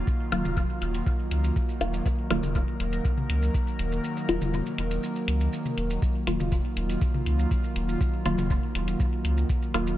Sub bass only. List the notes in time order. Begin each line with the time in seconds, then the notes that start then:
0.32 D#1
0.45 D#1
0.82 D#1
1.31 C#2
1.81 D#1
2.31 D#1
2.43 D#1
2.80 D#1
3.30 C#2
3.79 D#1
4.29 D#1
4.42 D#1
4.78 D#1
5.28 C#2
5.78 D#1
6.27 D#1
6.40 D#1
6.77 D#1
7.26 C#2
7.76 D#1
8.26 D#1
8.38 D#1
8.75 D#1
9.25 C#2
9.74 D#1